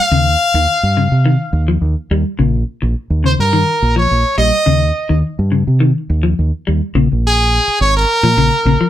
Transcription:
0.00 trumpet F5
0.11 fingered electric bass D#2, clean electric guitar C#3
0.54 fingered electric bass D#2, clean electric guitar D#3
0.83 fingered electric bass G2
0.97 clean electric guitar C#3
1.12 fingered electric bass C3
1.26 clean electric guitar D#3
1.53 fingered electric bass D#2
1.68 clean electric guitar F3
1.81 fingered electric bass D#2
2.11 fingered electric bass D#2, clean electric guitar G3
2.39 fingered electric bass A#1, clean electric guitar C#3
2.82 fingered electric bass A#1, muted clean electric guitar stroke
3.10 fingered electric bass D#2
3.24 clean electric guitar C#3, trumpet C5
3.39 fingered electric bass G2, trumpet A#4
3.53 clean electric guitar D#3
3.82 fingered electric bass A#1
3.96 clean electric guitar F3, trumpet C#5
4.11 fingered electric bass A#1
4.38 fingered electric bass A#1, clean electric guitar G3, trumpet D#5
4.66 fingered electric bass D#2, clean electric guitar C#3
5.09 fingered electric bass D#2, clean electric guitar D#3
5.39 fingered electric bass G2
5.52 clean electric guitar C#3
5.67 fingered electric bass C3
5.80 clean electric guitar D#3
6.10 fingered electric bass D#2
6.23 clean electric guitar F3
6.39 fingered electric bass D#2
6.67 fingered electric bass D#2, clean electric guitar G3
6.95 fingered electric bass A#1, clean electric guitar C#3
7.12 fingered electric bass A#1
7.27 trumpet G#4
7.68 muted fingered electric bass stroke
7.81 fingered electric bass G#1, trumpet C#5
7.96 trumpet A#4
8.23 fingered electric bass A#2, clean electric guitar F3
8.37 fingered electric bass A#1, clean electric guitar C#3
8.65 fingered electric bass A#1, clean electric guitar C#3
8.81 clean electric guitar F3

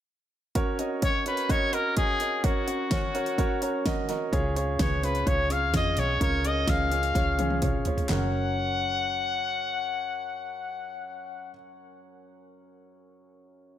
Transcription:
0.55 grand piano C#4 F#4 A#4 C#5, kick, closed hi-hat
0.79 grand piano C#4 F#4 A#4 D#5, closed hi-hat
1.02 grand piano C#4 F#4 A#4 C#5, trumpet C#5, kick, closed hi-hat
1.26 grand piano C#4 F#4 A#4 C#5, trumpet B4, closed hi-hat
1.37 closed hi-hat
1.49 grand piano C#4 F#4 A#4 D#5, trumpet C#5, kick, closed hi-hat
1.73 grand piano C#4 F#4 A#4 D#5, trumpet A#4, closed hi-hat
1.96 grand piano C#4 F#4 A#4 D#5, trumpet G#4, kick, closed hi-hat
2.20 grand piano C#4 F#4 A#4 D#5, closed hi-hat
2.44 grand piano C#4 F#4 A#4 C#5, trumpet F#4, kick, closed hi-hat
2.67 grand piano C#4 F#4 A#4 C#5, closed hi-hat
2.91 grand piano C#4 F#4 A#4 C#5, kick, snare, closed hi-hat
3.14 grand piano C#4 F#4 A#4 C#5, closed hi-hat
3.26 closed hi-hat
3.38 grand piano C#4 F#4 A#4 C#5, kick, closed hi-hat
3.62 grand piano C#4 F#4 A#4 C#5 A#5, closed hi-hat
3.85 grand piano C#4 F#4 A#4 D#5 F#5, kick, snare, closed hi-hat
4.09 grand piano C#4 F#4 A#4 D#5, snare, closed hi-hat
4.32 fingered electric bass C#2, grand piano C#3 C#4 F4 G#4 C#5, kick, closed hi-hat
4.56 grand piano C#4 F4 G#4 C#5, closed hi-hat
4.79 fingered electric bass C#2, grand piano C#4 F4 B4, trumpet C#5, kick, snare, closed hi-hat
5.03 grand piano C#4 F4 G#4 C#5, trumpet B4, closed hi-hat
5.15 closed hi-hat
5.26 fingered electric bass C#2, grand piano C#4 F4 G#4 C#5, trumpet C#5, kick, closed hi-hat
5.50 grand piano C#4 F4 G#4 C#5, trumpet F5, closed hi-hat
5.73 fingered electric bass F2, grand piano C#4 F4 G#4 C#5, trumpet D#5, kick, snare, closed hi-hat
5.97 fingered electric bass B1, grand piano C#4 F4 G#4 D#5, trumpet C#5, snare, closed hi-hat
6.21 fingered electric bass C#2, grand piano C#3 C#4 F4 G#4 A#4, trumpet C#5, kick, closed hi-hat
6.45 grand piano C#4 F4 G#4 A#4, trumpet D#5, closed hi-hat
6.68 fingered electric bass C#2, grand piano C#4 F4 G#4 D#5, trumpet F5, kick, snare, closed hi-hat
6.92 grand piano C#4 F4 G#4 C#5, closed hi-hat
7.03 closed hi-hat
7.15 fingered electric bass C#2, grand piano C#4 F4 G#4 C#5, kick, snare, closed hi-hat
7.39 grand piano C#4 F4 G#4 C#5, closed hi-hat, high tom
7.50 high tom
7.62 grand piano C#4 F4 G#4 C#5, kick, closed hi-hat, mid tom
7.85 fingered electric bass F1, grand piano C#4 F4 G#4 C#5, closed hi-hat, floor tom
7.98 closed hi-hat, floor tom
8.09 fingered electric bass F#1, grand piano F#2 C#4 F#4 A#4, trumpet F#5, snare, clap
8.13 grand piano C#5

